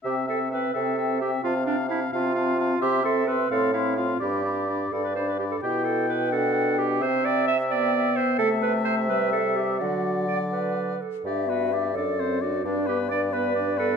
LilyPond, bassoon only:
\new Staff \with { instrumentName = "Bassoon" } { \clef bass \time 6/8 \key c \major \tempo 4. = 86 c4. c4. | c4. c4. | c4. a,4. | g,4. g,4. |
\key g \major b,2. | c2. | c2. | d2~ d8 r8 |
g,4. fis,4. | g,2. | }